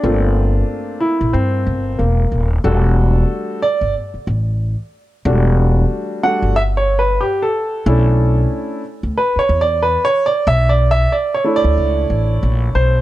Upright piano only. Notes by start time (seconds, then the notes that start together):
Already playing: D4
0.03 A3 A#3 C4 F4
1.00 E4
1.33 C4
1.99 A#3
2.64 G3 A3 D4 F#4 A4
3.62 D5
5.25 G3 A3 D4 F#4
6.23 G3 A3 D4 F#4 F#5
6.56 E5
6.77 C#5
6.99 B4
7.21 G4
7.42 A4
7.86 A3 C#4 D4 E4
9.18 B4
9.39 C#5
9.61 D5
9.83 B4
10.05 C#5
10.26 D5
10.48 E5
10.69 D5
10.91 E5
11.12 D5
11.34 C#5
11.44 A3 D4 E4 C#5
11.56 D5
12.75 C5